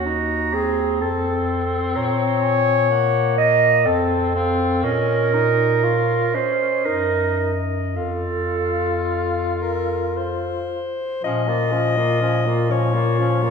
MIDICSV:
0, 0, Header, 1, 5, 480
1, 0, Start_track
1, 0, Key_signature, -5, "minor"
1, 0, Tempo, 949367
1, 994, Time_signature, 3, 2, 24, 8
1, 1957, Tempo, 988468
1, 2917, Tempo, 1015228
1, 3397, Tempo, 1102941
1, 4837, Tempo, 1065719
1, 5317, Tempo, 977199
1, 6430, End_track
2, 0, Start_track
2, 0, Title_t, "Soprano saxophone"
2, 0, Program_c, 0, 64
2, 32, Note_on_c, 0, 82, 74
2, 511, Note_on_c, 0, 81, 60
2, 519, Note_off_c, 0, 82, 0
2, 855, Note_off_c, 0, 81, 0
2, 990, Note_on_c, 0, 82, 66
2, 1227, Note_on_c, 0, 80, 69
2, 1234, Note_off_c, 0, 82, 0
2, 1472, Note_on_c, 0, 78, 62
2, 1480, Note_off_c, 0, 80, 0
2, 1711, Note_on_c, 0, 77, 67
2, 1718, Note_off_c, 0, 78, 0
2, 1954, Note_on_c, 0, 81, 69
2, 1961, Note_off_c, 0, 77, 0
2, 2190, Note_off_c, 0, 81, 0
2, 2193, Note_on_c, 0, 77, 61
2, 2429, Note_on_c, 0, 75, 64
2, 2436, Note_off_c, 0, 77, 0
2, 2668, Note_on_c, 0, 73, 58
2, 2675, Note_off_c, 0, 75, 0
2, 2914, Note_off_c, 0, 73, 0
2, 2918, Note_on_c, 0, 73, 56
2, 3156, Note_on_c, 0, 75, 60
2, 3163, Note_off_c, 0, 73, 0
2, 3877, Note_on_c, 0, 77, 58
2, 3883, Note_off_c, 0, 75, 0
2, 4313, Note_off_c, 0, 77, 0
2, 4361, Note_on_c, 0, 77, 58
2, 4583, Note_off_c, 0, 77, 0
2, 4596, Note_on_c, 0, 70, 78
2, 4837, Note_on_c, 0, 72, 73
2, 4843, Note_off_c, 0, 70, 0
2, 5316, Note_off_c, 0, 72, 0
2, 5319, Note_on_c, 0, 75, 110
2, 6042, Note_on_c, 0, 73, 91
2, 6049, Note_off_c, 0, 75, 0
2, 6430, Note_off_c, 0, 73, 0
2, 6430, End_track
3, 0, Start_track
3, 0, Title_t, "Clarinet"
3, 0, Program_c, 1, 71
3, 0, Note_on_c, 1, 66, 86
3, 270, Note_on_c, 1, 68, 85
3, 278, Note_off_c, 1, 66, 0
3, 514, Note_on_c, 1, 69, 77
3, 521, Note_off_c, 1, 68, 0
3, 990, Note_on_c, 1, 73, 102
3, 998, Note_off_c, 1, 69, 0
3, 1705, Note_off_c, 1, 73, 0
3, 1708, Note_on_c, 1, 75, 99
3, 1950, Note_on_c, 1, 69, 80
3, 1958, Note_off_c, 1, 75, 0
3, 2423, Note_off_c, 1, 69, 0
3, 2426, Note_on_c, 1, 70, 96
3, 3153, Note_on_c, 1, 72, 84
3, 3160, Note_off_c, 1, 70, 0
3, 3392, Note_on_c, 1, 70, 81
3, 3399, Note_off_c, 1, 72, 0
3, 3732, Note_off_c, 1, 70, 0
3, 3876, Note_on_c, 1, 69, 75
3, 5064, Note_off_c, 1, 69, 0
3, 5319, Note_on_c, 1, 61, 72
3, 5439, Note_on_c, 1, 65, 65
3, 5446, Note_off_c, 1, 61, 0
3, 5556, Note_on_c, 1, 61, 66
3, 5564, Note_off_c, 1, 65, 0
3, 5678, Note_on_c, 1, 65, 59
3, 5685, Note_off_c, 1, 61, 0
3, 5790, Note_off_c, 1, 65, 0
3, 5793, Note_on_c, 1, 61, 64
3, 5916, Note_on_c, 1, 65, 59
3, 5923, Note_off_c, 1, 61, 0
3, 6033, Note_on_c, 1, 61, 68
3, 6040, Note_off_c, 1, 65, 0
3, 6151, Note_on_c, 1, 65, 66
3, 6158, Note_off_c, 1, 61, 0
3, 6274, Note_off_c, 1, 65, 0
3, 6276, Note_on_c, 1, 61, 64
3, 6393, Note_on_c, 1, 65, 67
3, 6400, Note_off_c, 1, 61, 0
3, 6430, Note_off_c, 1, 65, 0
3, 6430, End_track
4, 0, Start_track
4, 0, Title_t, "Tenor saxophone"
4, 0, Program_c, 2, 66
4, 30, Note_on_c, 2, 63, 53
4, 268, Note_on_c, 2, 60, 61
4, 276, Note_off_c, 2, 63, 0
4, 506, Note_off_c, 2, 60, 0
4, 509, Note_on_c, 2, 60, 63
4, 1453, Note_off_c, 2, 60, 0
4, 1465, Note_on_c, 2, 58, 57
4, 1952, Note_on_c, 2, 60, 67
4, 1959, Note_off_c, 2, 58, 0
4, 2187, Note_off_c, 2, 60, 0
4, 2190, Note_on_c, 2, 60, 74
4, 2427, Note_on_c, 2, 61, 66
4, 2434, Note_off_c, 2, 60, 0
4, 2670, Note_on_c, 2, 63, 63
4, 2677, Note_off_c, 2, 61, 0
4, 2912, Note_on_c, 2, 65, 62
4, 2919, Note_off_c, 2, 63, 0
4, 3152, Note_on_c, 2, 61, 57
4, 3159, Note_off_c, 2, 65, 0
4, 3392, Note_on_c, 2, 63, 54
4, 3399, Note_off_c, 2, 61, 0
4, 3732, Note_off_c, 2, 63, 0
4, 3868, Note_on_c, 2, 65, 65
4, 5145, Note_off_c, 2, 65, 0
4, 5314, Note_on_c, 2, 53, 76
4, 5437, Note_on_c, 2, 58, 61
4, 5444, Note_off_c, 2, 53, 0
4, 5554, Note_on_c, 2, 53, 63
4, 5561, Note_off_c, 2, 58, 0
4, 5676, Note_on_c, 2, 58, 62
4, 5683, Note_off_c, 2, 53, 0
4, 5793, Note_off_c, 2, 58, 0
4, 5796, Note_on_c, 2, 53, 64
4, 5919, Note_on_c, 2, 58, 61
4, 5926, Note_off_c, 2, 53, 0
4, 6036, Note_on_c, 2, 53, 65
4, 6044, Note_off_c, 2, 58, 0
4, 6155, Note_on_c, 2, 58, 62
4, 6162, Note_off_c, 2, 53, 0
4, 6274, Note_off_c, 2, 58, 0
4, 6277, Note_on_c, 2, 53, 65
4, 6396, Note_on_c, 2, 58, 67
4, 6403, Note_off_c, 2, 53, 0
4, 6430, Note_off_c, 2, 58, 0
4, 6430, End_track
5, 0, Start_track
5, 0, Title_t, "Bass clarinet"
5, 0, Program_c, 3, 71
5, 0, Note_on_c, 3, 39, 58
5, 514, Note_on_c, 3, 41, 61
5, 521, Note_off_c, 3, 39, 0
5, 989, Note_off_c, 3, 41, 0
5, 992, Note_on_c, 3, 46, 66
5, 1953, Note_on_c, 3, 41, 60
5, 1961, Note_off_c, 3, 46, 0
5, 2426, Note_on_c, 3, 46, 67
5, 2433, Note_off_c, 3, 41, 0
5, 3254, Note_off_c, 3, 46, 0
5, 3394, Note_on_c, 3, 42, 59
5, 3873, Note_on_c, 3, 41, 59
5, 3880, Note_off_c, 3, 42, 0
5, 5165, Note_off_c, 3, 41, 0
5, 5316, Note_on_c, 3, 46, 79
5, 6430, Note_off_c, 3, 46, 0
5, 6430, End_track
0, 0, End_of_file